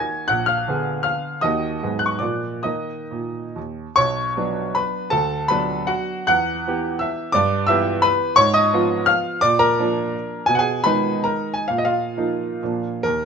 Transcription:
0.00 0.27 D#3 soft
0.00 0.27 A#3 soft
0.00 0.27 F#4 medium
0.00 0.28 G#5 medium
0.00 0.30 G#6 medium
0.28 0.66 A#1 medium
0.28 0.47 F#5 medium
0.28 0.47 F#6 loud
0.46 1.02 F5 medium
0.46 1.01 F6 medium
0.68 1.39 D3 soft
0.68 1.40 B3 soft
0.68 1.40 G#4 medium
1.03 1.39 F5 medium
1.03 1.41 F6 medium
1.41 1.81 D#2 medium
1.41 1.78 D#3 soft
1.41 1.78 A#3 soft
1.41 1.79 F#4 soft
1.41 1.97 D#5 medium
1.41 2.00 D#6 medium
1.83 2.21 G#2 medium
1.83 2.18 F#3 soft
1.83 2.18 B3 soft
1.83 2.18 G#4 soft
1.99 2.07 F#6 medium
2.06 2.20 C#6 medium
2.19 2.63 A#2 soft
2.19 2.60 F3 soft
2.19 2.60 A#3 soft
2.19 2.61 F4 soft
2.19 2.61 D5 soft
2.19 2.63 D6 medium
2.63 2.98 D#3 soft
2.63 3.02 A#3 soft
2.63 3.02 D#4 soft
2.63 3.52 D#5 medium
2.63 3.55 D#6 medium
3.11 3.43 A#2 soft
3.56 3.85 D#2 soft
3.96 4.35 B1 medium
3.96 4.72 C#5 medium
3.96 4.75 C#6 loud
4.37 5.08 F#3 soft
4.37 5.08 B3 soft
4.37 5.08 D4 medium
4.75 5.09 B4 medium
4.75 5.11 B5 medium
5.10 5.49 D2 medium
5.10 5.47 A4 medium
5.10 5.49 A5 medium
5.48 6.25 F#3 medium
5.48 6.25 B3 soft
5.48 6.25 D4 medium
5.48 5.86 B4 medium
5.48 5.88 B5 medium
5.87 6.25 F#4 medium
5.87 6.27 F#5 medium
6.27 6.65 E2 medium
6.27 6.97 F#5 loud
6.27 7.00 F#6 loud
6.67 7.31 E3 medium
6.67 7.31 B3 medium
6.67 7.32 G4 medium
6.99 7.32 E5 medium
6.99 7.33 E6 medium
7.32 7.68 G2 medium
7.32 7.67 D5 medium
7.32 7.68 D6 loud
7.67 8.33 E3 medium
7.67 8.33 B3 medium
7.67 8.34 G4 medium
7.67 8.01 E5 medium
7.67 8.03 E6 loud
8.02 8.34 B4 medium
8.02 8.36 B5 loud
8.36 8.71 G#2 medium
8.36 8.52 C#5 loud
8.36 8.53 C#6 loud
8.54 9.03 D#5 medium
8.54 9.07 D#6 loud
8.73 9.38 F3 medium
8.73 9.38 B3 medium
8.73 9.38 F4 medium
9.06 9.39 F5 medium
9.06 9.40 F6 loud
9.41 9.77 A#2 medium
9.41 9.58 D5 loud
9.41 9.59 D6 loud
9.59 10.45 A#4 medium
9.59 10.48 A#5 loud
9.79 10.45 F3 medium
9.79 10.45 A#3 medium
9.79 10.46 D4 medium
10.46 10.84 B2 medium
10.46 10.54 G#5 loud
10.55 10.61 F#5 medium
10.55 10.84 G#5 loud
10.60 10.83 G#4 medium
10.84 11.64 D#3 medium
10.84 11.64 G#3 medium
10.84 11.64 D#4 medium
10.84 11.22 B4 medium
10.84 11.24 B5 medium
11.24 11.51 A#4 medium
11.24 11.52 A#5 medium
11.54 11.68 G#5 medium
11.68 12.14 A#2 medium
11.68 11.76 F5 medium
11.78 11.86 D#5 medium
11.85 12.79 F4 medium
11.85 12.82 F5 medium
12.17 12.58 F3 soft
12.17 12.58 A#3 soft
12.17 12.58 D#4 soft
12.63 13.02 A#2 soft
12.63 12.99 F3 soft
12.63 13.00 A#3 soft
12.63 13.00 D4 soft
13.03 13.25 D#2 medium
13.03 13.25 A#4 medium

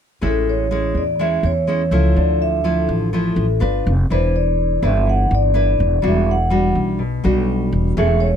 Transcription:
0.21 0.91 A1 medium
0.21 1.16 A2 soft
0.21 0.66 G#3 soft
0.21 0.66 C#4 soft
0.21 0.67 E4 medium
0.27 0.49 A4 medium
0.49 0.93 C#5 medium
0.71 1.02 G#3 medium
0.71 1.02 C#4 soft
0.71 1.02 E4 medium
0.95 1.40 E2 medium
0.95 1.21 D5 medium
1.19 2.14 E3 soft
1.19 1.50 G#3 medium
1.19 1.51 C#4 soft
1.19 1.51 E4 medium
1.19 1.42 E5 medium
1.43 1.88 E2 medium
1.43 2.19 C#5 loud
1.67 1.81 G#3 soft
1.67 1.82 C#4 medium
1.67 1.82 E4 medium
1.91 2.14 C#2 medium
1.91 2.60 F3 medium
1.91 2.60 A3 medium
1.91 2.60 E4 medium
2.16 2.85 D2 medium
2.16 3.10 D3 soft
2.16 2.41 D5 medium
2.42 2.86 E5 medium
2.64 3.08 F3 medium
2.64 3.09 A3 soft
2.64 3.09 E4 medium
2.89 3.33 A1 medium
3.13 3.59 A2 soft
3.13 3.45 F3 medium
3.13 3.45 A3 soft
3.13 3.46 E4 medium
3.36 3.59 A1 medium
3.60 3.84 G1 medium
3.60 3.92 D4 medium
3.60 3.92 F4 medium
3.60 3.92 B4 medium
3.87 4.08 F1 medium
4.10 4.78 E1 medium
4.10 5.04 E3 soft
4.10 4.79 D4 medium
4.10 4.79 E4 medium
4.10 4.79 B4 medium
4.10 4.35 C5 medium
4.36 4.84 D5 loud
4.82 5.27 G1 medium
4.82 5.51 D4 medium
4.82 5.51 E4 medium
4.82 5.51 B4 medium
4.82 5.08 E5 medium
5.06 6.00 E3 medium
5.06 5.32 F#5 loud
5.31 5.76 G1 medium
5.31 6.07 D5 medium
5.54 5.99 D4 medium
5.54 5.99 E4 soft
5.54 5.99 B4 medium
5.80 6.02 E1 medium
6.02 6.72 E1 medium
6.02 6.97 E3 medium
6.02 6.34 G3 medium
6.02 6.34 D4 soft
6.02 6.34 F#4 medium
6.08 6.30 E5 medium
6.31 6.74 F#5 medium
6.50 6.99 G3 medium
6.50 6.99 D4 soft
6.50 6.99 F#4 medium
6.75 7.20 B1 medium
6.99 7.94 B2 soft
7.24 7.69 B1 medium
7.24 7.93 G3 medium
7.24 7.93 D4 medium
7.24 7.93 F#4 medium
7.72 7.95 E1 medium
7.97 8.36 E1 medium
7.97 8.36 E3 medium
7.97 8.28 A3 medium
7.97 8.28 C#4 medium
7.97 8.28 G#4 medium
7.97 8.20 E5 loud
8.20 8.36 C#5 loud

